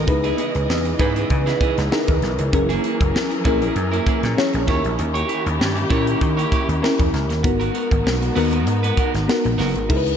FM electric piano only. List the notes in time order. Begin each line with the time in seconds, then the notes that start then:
Already playing: D#4
0.07 D#4 E4 G#4 B4
0.99 D#4 E4 G#4 B4
1.91 D#4 E4 G#4 A#4
2.53 C#4 E4 G#4 A#4
3.45 C#4 E4 G#4 A#4
4.37 C#4 E4 G#4 C#5
4.68 C#4 E4 F#4 A#4
4.75 G4
5.90 C#4 E4 G4 A#4
6.82 C#4 E4 G4 A#4
7.43 B3 D#4 F#4 A#4
8.35 B3 D#4 F#4 A#4
9.28 B3 D#4 F#4 A#4
9.89 D#4 E4 G#4 A#4
9.97 B4